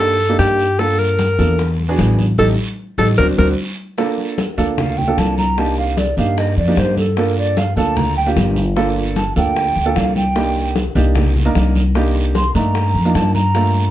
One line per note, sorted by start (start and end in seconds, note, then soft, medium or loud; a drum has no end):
0.00 0.35 G2 medium
0.00 0.14 A#3 medium
0.00 0.14 D4 medium
0.00 0.14 D#4 medium
0.00 0.15 G4 loud
0.00 0.36 A4 loud
0.19 high conga soft
0.19 maracas medium
0.29 0.64 A#3 medium
0.29 0.64 D4 medium
0.29 0.64 D#4 medium
0.29 0.64 G4 medium
0.39 1.33 G2 medium
0.39 0.80 G4 loud
0.39 high bongo medium
0.39 low bongo medium
0.39 high conga soft
0.39 short guiro medium
0.39 maracas medium
0.59 high bongo soft
0.59 short guiro medium
0.59 maracas soft
0.79 1.21 A#3 medium
0.79 1.21 D4 medium
0.79 1.21 F4 medium
0.79 1.00 A4 loud
0.79 1.21 A4 medium
0.79 high bongo medium
0.79 high conga soft
0.79 long guiro medium
0.79 maracas medium
0.98 1.79 A#4 loud
0.98 high conga soft
0.98 maracas medium
1.18 high bongo medium
1.18 high conga medium
1.18 short guiro medium
1.18 maracas medium
1.38 1.95 E2 loud
1.38 1.59 A#3 medium
1.38 1.59 D4 medium
1.38 1.59 F4 medium
1.38 1.59 A4 medium
1.38 high conga soft
1.38 short guiro medium
1.38 maracas soft
1.58 high bongo medium
1.58 high conga soft
1.58 long guiro medium
1.58 maracas medium
1.79 high conga soft
1.89 2.24 B3 loud
1.89 2.24 D4 medium
1.89 2.24 F#4 medium
1.89 2.24 G#4 loud
1.98 2.36 A1 medium
1.98 high bongo medium
1.98 low bongo medium
1.98 high conga medium
1.98 short guiro medium
1.98 maracas medium
2.18 high conga medium
2.18 short guiro medium
2.18 maracas soft
2.38 2.53 A1 medium
2.38 2.51 D#4 loud
2.38 2.51 G4 medium
2.38 2.48 A4 medium
2.38 2.51 A4 loud
2.38 low bongo medium
2.38 high conga medium
2.38 long guiro loud
2.38 maracas medium
2.98 3.13 A1 medium
2.98 3.11 D#4 medium
2.98 3.11 G4 medium
2.98 3.08 A4 medium
2.98 3.11 A4 medium
2.98 low bongo loud
2.98 high conga medium
2.98 long guiro medium
2.98 maracas medium
3.18 3.33 D2 loud
3.18 3.32 C4 medium
3.18 3.32 D4 medium
3.18 3.31 F#4 medium
3.18 3.28 A#4 loud
3.18 low bongo loud
3.18 high conga medium
3.18 long guiro medium
3.18 maracas loud
3.38 3.53 D2 loud
3.38 3.51 C4 medium
3.38 3.51 D4 medium
3.38 3.51 F#4 medium
3.38 3.48 A#4 medium
3.38 low bongo loud
3.38 high conga loud
3.38 long guiro medium
3.38 maracas loud
3.98 4.40 A#3 loud
3.98 4.40 D4 medium
3.98 4.40 F4 medium
3.98 4.40 A4 loud
3.98 high bongo medium
3.98 high conga soft
3.98 long guiro medium
3.98 maracas medium
4.18 high bongo soft
4.18 high conga soft
4.18 maracas soft
4.38 high bongo medium
4.38 high conga loud
4.38 short guiro medium
4.38 maracas medium
4.58 5.14 D2 medium
4.58 4.93 A#3 medium
4.58 4.93 D4 medium
4.58 4.93 F4 medium
4.58 4.93 A4 loud
4.58 high bongo soft
4.58 high conga soft
4.58 short guiro medium
4.58 maracas soft
4.78 4.99 F5 medium
4.78 high bongo medium
4.78 high conga soft
4.78 low conga medium
4.78 long guiro medium
4.78 maracas medium
4.98 5.20 G5 medium
4.98 high bongo soft
4.98 high conga soft
4.98 low conga medium
4.98 maracas soft
5.07 5.43 A#3 medium
5.07 5.43 D4 medium
5.07 5.43 F4 medium
5.07 5.43 A4 medium
5.18 6.11 C2 medium
5.18 5.37 A5 medium
5.18 high bongo medium
5.18 low bongo medium
5.18 high conga medium
5.18 short guiro medium
5.18 maracas medium
5.38 5.60 A#5 loud
5.38 high conga medium
5.38 short guiro medium
5.38 maracas soft
5.57 6.00 A#3 medium
5.57 6.00 D4 medium
5.57 6.00 D#4 medium
5.57 6.00 G4 medium
5.57 5.78 A5 medium
5.57 high bongo medium
5.57 long guiro medium
5.57 maracas medium
5.78 5.99 F5 medium
5.78 high bongo soft
5.78 high conga soft
5.78 maracas soft
5.97 6.18 D5 medium
5.97 high bongo medium
5.97 high conga medium
5.97 short guiro medium
5.97 maracas medium
6.17 6.54 G2 medium
6.17 6.52 A#3 medium
6.17 6.52 D4 medium
6.17 6.53 D#4 medium
6.17 6.53 G4 medium
6.17 6.40 F5 medium
6.17 short guiro medium
6.17 maracas soft
6.37 6.57 D#5 medium
6.37 high bongo medium
6.37 high conga soft
6.37 long guiro medium
6.37 maracas medium
6.57 6.76 F2 medium
6.57 6.80 D5 medium
6.57 high bongo soft
6.57 high conga soft
6.57 maracas soft
6.67 7.02 A#3 medium
6.67 7.02 D4 medium
6.67 7.02 D#4 medium
6.67 7.02 G4 medium
6.77 7.71 G2 medium
6.77 6.98 C5 medium
6.77 high bongo medium
6.77 low bongo medium
6.77 high conga medium
6.77 short guiro medium
6.77 maracas medium
6.97 7.20 A4 medium
6.97 high bongo soft
6.97 high conga medium
6.97 short guiro medium
6.97 maracas soft
7.17 7.59 A#3 medium
7.17 7.59 D4 medium
7.17 7.59 F4 medium
7.17 7.59 A4 medium
7.17 7.38 A#4 medium
7.17 high bongo medium
7.17 long guiro medium
7.17 maracas medium
7.37 7.60 D5 medium
7.37 high bongo soft
7.37 high conga soft
7.37 maracas soft
7.57 7.76 F5 medium
7.57 high bongo medium
7.57 high conga loud
7.57 short guiro medium
7.57 maracas medium
7.76 8.32 D2 medium
7.76 8.12 A#3 medium
7.76 8.12 D4 medium
7.76 8.12 F4 medium
7.76 8.12 A4 medium
7.76 7.99 A5 medium
7.76 high bongo soft
7.76 high conga soft
7.76 short guiro medium
7.76 maracas soft
7.96 8.17 A#5 loud
7.96 high bongo medium
7.96 high conga soft
7.96 low conga medium
7.96 long guiro medium
7.96 maracas medium
8.16 8.29 G5 medium
8.16 high bongo soft
8.16 high conga soft
8.16 maracas soft
8.26 8.61 A#3 medium
8.26 8.62 D4 medium
8.26 8.62 F4 medium
8.26 8.62 G4 loud
8.36 9.30 G1 loud
8.36 high bongo medium
8.36 low bongo medium
8.36 high conga medium
8.36 short guiro medium
8.36 maracas medium
8.56 high conga medium
8.56 short guiro medium
8.56 maracas soft
8.76 9.18 A#3 loud
8.76 9.18 D4 medium
8.76 9.19 F4 medium
8.76 9.19 A4 loud
8.76 high bongo medium
8.76 high conga soft
8.76 long guiro medium
8.76 maracas medium
8.96 high bongo soft
8.96 high conga soft
8.96 maracas soft
9.16 9.35 A5 medium
9.16 high bongo medium
9.16 high conga medium
9.16 short guiro medium
9.16 maracas medium
9.36 9.73 D2 medium
9.36 9.71 A#3 medium
9.36 9.71 D4 medium
9.36 9.71 F4 medium
9.36 9.71 A4 medium
9.36 9.99 G5 medium
9.36 short guiro medium
9.36 maracas soft
9.56 high bongo medium
9.56 high conga soft
9.56 long guiro medium
9.56 maracas medium
9.76 9.95 D2 medium
9.76 high bongo soft
9.76 high conga soft
9.76 maracas soft
9.85 10.21 A#3 medium
9.85 10.21 D4 medium
9.85 10.21 F4 medium
9.85 10.21 A4 medium
9.96 10.90 C2 medium
9.96 10.16 F5 medium
9.96 high bongo medium
9.96 low bongo medium
9.96 high conga medium
9.96 short guiro medium
9.96 maracas medium
10.15 10.72 G5 medium
10.15 high bongo soft
10.15 high conga medium
10.15 short guiro medium
10.15 maracas soft
10.35 10.78 A#3 medium
10.35 10.78 D4 medium
10.35 10.78 D#4 medium
10.35 10.78 G4 medium
10.35 high bongo medium
10.35 long guiro medium
10.35 maracas medium
10.55 high bongo soft
10.55 high conga soft
10.55 maracas soft
10.75 high bongo medium
10.75 high conga medium
10.75 short guiro medium
10.75 maracas medium
10.95 11.51 C2 loud
10.95 11.31 A#3 medium
10.95 11.31 D4 medium
10.95 11.31 D#4 medium
10.95 11.31 G4 loud
10.95 high bongo soft
10.95 high conga soft
10.95 short guiro medium
10.95 maracas soft
11.15 high bongo medium
11.15 high conga soft
11.15 low conga medium
11.15 long guiro medium
11.15 maracas medium
11.35 high bongo soft
11.35 high conga soft
11.35 low conga medium
11.35 maracas soft
11.45 11.80 A#3 medium
11.45 11.80 D4 medium
11.45 11.80 D#4 medium
11.45 11.81 A#4 loud
11.55 12.49 C2 medium
11.55 high bongo medium
11.55 low bongo medium
11.55 high conga medium
11.55 short guiro medium
11.55 maracas medium
11.75 high conga medium
11.75 short guiro medium
11.75 maracas soft
11.95 12.37 A#3 medium
11.95 12.37 D4 medium
11.95 12.37 D#4 medium
11.95 12.37 G4 loud
11.95 high bongo medium
11.95 high conga soft
11.95 long guiro medium
11.95 maracas medium
12.15 high bongo soft
12.15 high conga soft
12.15 maracas soft
12.35 12.54 C6 medium
12.35 high bongo medium
12.35 high conga medium
12.35 short guiro medium
12.35 maracas medium
12.55 12.92 G2 medium
12.55 12.90 A3 medium
12.55 12.90 A#3 medium
12.55 12.90 D4 medium
12.55 12.90 D#4 medium
12.55 13.17 A#5 medium
12.55 short guiro medium
12.55 maracas soft
12.75 high bongo medium
12.75 high conga soft
12.75 long guiro medium
12.75 maracas medium
12.94 13.13 F2 medium
12.94 high bongo soft
12.94 high conga soft
12.94 maracas soft
13.05 13.40 A#3 medium
13.05 13.40 D4 medium
13.05 13.40 D#4 medium
13.05 13.40 F4 medium
13.14 13.91 G2 medium
13.14 13.34 A5 medium
13.14 high bongo medium
13.14 low bongo medium
13.14 high conga medium
13.14 short guiro medium
13.14 maracas medium
13.34 13.91 A#5 loud
13.34 high bongo soft
13.34 high conga medium
13.34 short guiro medium
13.34 maracas soft
13.54 13.91 A3 medium
13.54 13.91 A#3 medium
13.54 13.91 D4 medium
13.54 13.91 F4 medium
13.54 high bongo medium
13.54 high conga soft
13.54 long guiro medium
13.54 maracas medium
13.74 high bongo soft
13.74 high conga soft
13.74 maracas soft